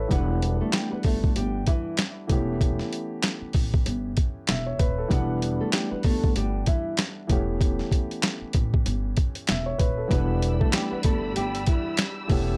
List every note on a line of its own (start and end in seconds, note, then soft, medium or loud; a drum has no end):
0.00 0.28 A4 medium
0.00 0.13 B4 medium
0.00 0.13 C#5 medium
0.00 0.13 E5 medium
0.08 0.60 E1 loud
0.08 2.24 E3 medium
0.08 2.25 G3 medium
0.08 2.25 B3 medium
0.08 0.58 B3 medium
0.08 2.26 D4 medium
0.08 0.57 B4 medium
0.08 kick loud
0.08 closed hi-hat medium
0.13 2.27 F#5 medium
0.42 closed hi-hat medium
0.60 0.73 A3 medium
0.60 0.72 A4 medium
0.72 0.90 G3 medium
0.72 0.90 G4 medium
0.72 snare loud
0.72 clap loud
0.72 closed hi-hat medium
0.92 1.04 B3 medium
0.92 1.03 B4 medium
0.92 muted upright bass stroke soft
1.03 1.29 G1 medium
1.03 1.33 A3 medium
1.03 1.33 A4 medium
1.03 kick medium
1.03 open hi-hat medium
1.24 kick medium
1.36 1.61 G1 medium
1.36 1.65 G3 medium
1.36 1.64 G4 medium
1.36 closed hi-hat medium
1.67 1.96 E3 medium
1.67 1.95 E4 medium
1.67 kick medium
1.67 closed hi-hat medium
1.97 snare loud
1.97 clap medium
1.97 closed hi-hat medium
2.27 2.79 E1 loud
2.27 4.75 E3 medium
2.27 4.75 A3 medium
2.27 4.76 B3 medium
2.27 4.76 C#4 medium
2.27 kick medium
2.27 closed hi-hat medium
2.32 4.77 G4 medium
2.61 kick loud
2.61 closed hi-hat medium
2.79 snare soft
2.93 closed hi-hat medium
3.23 snare loud
3.23 clap loud
3.23 closed hi-hat medium
3.42 muted upright bass stroke soft
3.53 3.79 A1 medium
3.53 kick medium
3.53 open hi-hat medium
3.74 kick loud
3.86 4.11 G1 loud
3.86 closed hi-hat medium
4.17 kick medium
4.17 closed hi-hat medium
4.47 4.73 E1 loud
4.47 4.66 E5 medium
4.47 snare loud
4.47 clap medium
4.47 closed hi-hat medium
4.66 4.79 C#5 medium
4.79 5.04 D#1 medium
4.79 4.97 B4 medium
4.79 kick loud
4.79 closed hi-hat medium
4.98 5.28 A4 medium
5.08 5.60 E1 loud
5.08 7.24 E3 medium
5.08 7.25 G3 medium
5.08 7.26 B3 medium
5.08 5.57 B3 medium
5.08 7.26 D4 medium
5.08 5.57 B4 loud
5.08 kick loud
5.08 closed hi-hat medium
5.13 7.27 F#5 medium
5.42 closed hi-hat medium
5.61 5.73 A3 medium
5.61 5.72 A4 medium
5.72 5.90 G3 medium
5.72 5.90 G4 medium
5.72 snare loud
5.72 clap loud
5.72 closed hi-hat medium
5.92 6.04 B3 medium
5.92 6.03 B4 medium
5.92 muted upright bass stroke soft
6.03 6.29 G1 medium
6.03 6.33 A3 medium
6.03 6.33 A4 medium
6.03 kick medium
6.03 open hi-hat medium
6.24 kick medium
6.36 6.61 G1 medium
6.36 6.65 G3 medium
6.36 6.64 G4 medium
6.36 closed hi-hat medium
6.66 6.96 E3 medium
6.66 6.95 E4 medium
6.66 kick medium
6.66 closed hi-hat medium
6.97 snare loud
6.97 clap medium
6.97 closed hi-hat medium
7.27 7.79 E1 loud
7.27 9.74 E3 medium
7.27 9.75 A3 medium
7.27 9.76 B3 medium
7.27 9.76 C#4 medium
7.27 kick loud
7.27 closed hi-hat medium
7.32 9.77 G4 medium
7.61 kick loud
7.61 closed hi-hat medium
7.79 snare soft
7.92 kick medium
7.92 closed hi-hat medium
8.11 closed hi-hat soft
8.22 snare loud
8.22 clap loud
8.22 closed hi-hat medium
8.42 muted upright bass stroke soft
8.53 8.79 A1 medium
8.53 kick medium
8.53 closed hi-hat medium
8.74 kick loud
8.86 9.10 G1 loud
8.86 closed hi-hat medium
9.17 kick loud
9.17 closed hi-hat medium
9.35 closed hi-hat medium
9.47 9.73 E1 medium
9.47 9.66 E5 medium
9.47 snare loud
9.47 clap medium
9.47 closed hi-hat medium
9.66 9.79 C#5 medium
9.78 10.04 D#1 medium
9.78 9.96 B4 medium
9.78 kick loud
9.78 closed hi-hat medium
9.98 10.27 A4 medium
10.08 10.60 E1 loud
10.08 12.24 E3 medium
10.08 12.25 G3 medium
10.08 12.25 B3 medium
10.08 10.58 B3 medium
10.08 12.26 D4 medium
10.08 12.57 G4 medium
10.08 10.57 B4 loud
10.08 12.27 D5 medium
10.08 12.27 B5 medium
10.08 12.57 E6 loud
10.08 kick loud
10.08 closed hi-hat medium
10.13 12.27 F#5 medium
10.42 closed hi-hat medium
10.60 10.73 A3 medium
10.60 10.72 A4 medium
10.60 kick loud
10.72 10.90 G3 medium
10.72 10.90 G4 medium
10.72 finger snap medium
10.72 snare loud
10.72 clap loud
10.72 closed hi-hat medium
10.92 11.04 B3 medium
10.92 11.03 B4 medium
10.92 muted upright bass stroke soft
11.03 11.29 G1 loud
11.03 11.33 A3 medium
11.03 11.33 A4 medium
11.03 kick medium
11.03 closed hi-hat medium
11.36 11.60 G1 medium
11.36 11.65 G3 medium
11.36 11.64 G4 medium
11.36 closed hi-hat medium
11.55 closed hi-hat medium
11.66 11.96 E3 medium
11.66 11.95 E4 medium
11.66 kick loud
11.66 closed hi-hat medium
11.97 finger snap medium
11.97 snare loud
11.97 clap medium
11.97 closed hi-hat medium
12.27 12.57 E1 loud
12.27 12.57 E3 medium
12.27 12.57 A3 medium
12.27 12.57 B3 medium
12.27 12.57 C#4 medium
12.27 12.57 C#5 medium
12.27 12.57 A5 medium
12.27 kick loud
12.27 open hi-hat medium
12.32 12.57 G4 medium